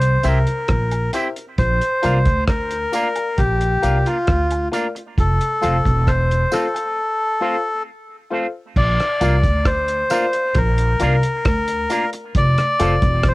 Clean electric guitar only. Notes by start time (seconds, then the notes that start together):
0.23 C4 E4 G4 C5
1.13 C4 E4 G4 C5
2.03 A#3 D4 F4 A#4
2.94 A#3 D4 F4 A#4
3.83 A#3 D4 F4 A#4
4.07 A#3 D4 F4 A#4
4.72 A#3 D4 F4 A#4
4.95 muted clean electric guitar stroke
5.61 A3 C4 F4 A4
6.51 A3 C4 F4 A4
7.41 A3 C4 F4 A4
8.31 A3 C4 F4 A4
9.21 A#3 D4 F4 A#4
10.11 A#3 D4 F4 A#4
10.35 muted clean electric guitar stroke
11.01 A#3 D4 F4 A#4
11.90 A#3 D4 F4 A#4
12.13 muted clean electric guitar stroke
12.80 A3 C4 F4 A4